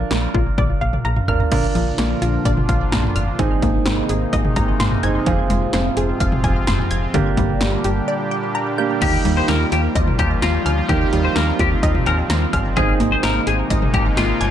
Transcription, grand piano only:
0.00 1.25 D4 medium
0.00 1.25 F4 medium
0.00 1.25 A#4 medium
1.28 1.50 D4 medium
1.28 1.50 F4 medium
1.28 1.50 A#4 medium
1.52 3.35 D4 medium
1.52 3.35 F4 medium
1.52 3.35 A#4 medium
3.39 5.00 C4 medium
3.39 5.00 D#4 medium
3.39 5.00 G#4 medium
5.03 5.25 C4 medium
5.03 5.27 D#4 medium
5.03 5.25 G#4 medium
5.26 7.10 C4 medium
5.26 7.10 F4 medium
5.26 7.10 G#4 medium
7.14 8.75 A#3 medium
7.14 8.75 D4 medium
7.14 8.75 G4 medium
8.78 9.00 A#3 medium
8.78 9.02 D4 medium
8.78 9.00 G4 medium
9.02 10.86 A#3 medium
9.02 10.86 D#4 medium
9.02 10.86 G4 medium
10.89 12.73 A#3 medium
10.89 12.73 D#4 medium
10.89 12.73 G4 medium
12.77 14.51 C4 medium
12.77 14.51 D#4 medium
12.77 14.51 G#4 medium

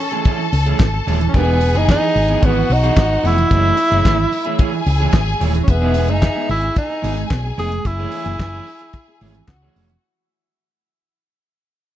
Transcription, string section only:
0.00 1.30 A4 medium
0.00 1.30 A5 medium
1.34 2.40 G#4 medium
1.34 2.40 G#5 medium
2.42 3.48 F#4 medium
2.42 3.48 F#5 loud
3.51 4.57 E4 medium
3.51 4.57 E5 medium
4.59 5.66 G#4 medium
4.59 5.66 G#5 loud
5.68 6.74 G#4 medium
5.68 6.74 E5 medium
6.76 7.83 G#4 medium
6.76 7.83 G#5 loud
7.85 9.45 G#4 medium
7.85 9.45 G#5 medium
9.48 10.02 F#4 medium
9.48 10.02 F#5 medium

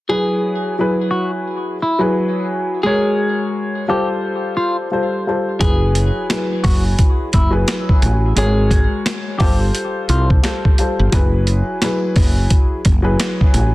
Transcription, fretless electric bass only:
5.61 6.09 F#1 loud
6.64 6.94 F#1 medium
7.34 7.64 F#1 medium
8.02 8.32 A1 loud
8.37 8.85 G#1 loud
9.40 9.70 G1 medium
10.09 10.39 C2 medium
10.99 11.11 G1 medium
11.13 11.61 F#1 loud
12.16 12.46 F#1 medium
12.85 13.15 F#1 medium
13.54 13.75 A1 loud

